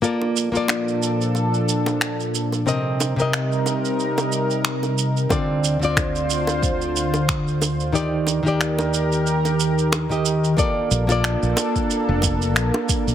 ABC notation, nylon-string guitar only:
X:1
M:4/4
L:1/16
Q:"Swing 16ths" 1/4=91
K:Bb
V:1 name="Nylon-string guitar"
[B,FAd]3 [B,FAd]12- [B,FAd] | [C,CBe]3 [C,CBe]12- [C,CBe] | [D,CFd]3 [D,CFd]12- [D,CFd] | [E,EGd]3 [E,EGd]8- [E,EGd]2 [E,EGe]3 |
[B,FAd]3 [B,FAd]12- [B,FAd] |]